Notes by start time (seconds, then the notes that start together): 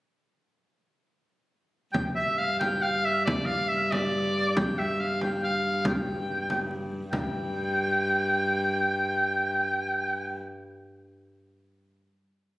1.93 G2 G5, frame drum
2.15 E5, frame drum
2.38 F5
2.60 G5, frame drum
2.82 F5
3.05 E5
3.25 D5, frame drum
3.46 F5, frame drum
3.69 E5
3.92 D5, frame drum
4.56 G5, frame drum
4.78 E5, frame drum
5.00 F5
5.21 G5, frame drum
5.44 F5
5.85 G5, frame drum
6.50 frame drum
6.71 frame drum
6.92 frame drum
7.12 G2 G5, frame drum